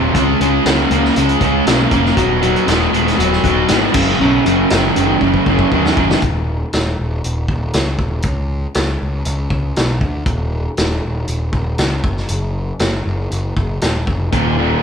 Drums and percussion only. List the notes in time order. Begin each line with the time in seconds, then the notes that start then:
0.15 kick, closed hi-hat
0.41 closed hi-hat
0.66 snare, closed hi-hat
0.91 closed hi-hat
1.05 snare
1.16 closed hi-hat
1.29 closed hi-hat
1.41 kick, closed hi-hat
1.67 snare, closed hi-hat
1.91 kick, closed hi-hat
2.06 snare
2.17 kick, closed hi-hat
2.42 closed hi-hat
2.56 closed hi-hat
2.68 snare, closed hi-hat
2.94 closed hi-hat
3.08 snare, closed hi-hat
3.20 closed hi-hat
3.33 snare
3.44 kick, closed hi-hat
3.68 snare, closed hi-hat
3.94 kick, crash
4.46 closed hi-hat
4.70 snare, closed hi-hat
4.96 closed hi-hat
5.21 kick
5.34 kick
5.46 kick
5.59 kick
5.72 kick
5.86 snare
5.97 kick
6.11 snare
6.22 kick, closed hi-hat
6.73 snare, closed hi-hat
7.24 closed hi-hat
7.48 kick
7.73 snare, closed hi-hat
7.99 kick
8.22 kick, closed hi-hat
8.74 snare, closed hi-hat
9.25 closed hi-hat
9.50 kick
9.76 snare, closed hi-hat
10.01 kick
10.26 kick, closed hi-hat
10.77 snare, closed hi-hat
11.28 closed hi-hat
11.53 kick
11.78 snare, closed hi-hat
12.04 kick
12.17 snare
12.29 closed hi-hat
12.79 snare, closed hi-hat
13.31 closed hi-hat
13.57 kick
13.81 snare, closed hi-hat
14.07 kick
14.33 kick, closed hi-hat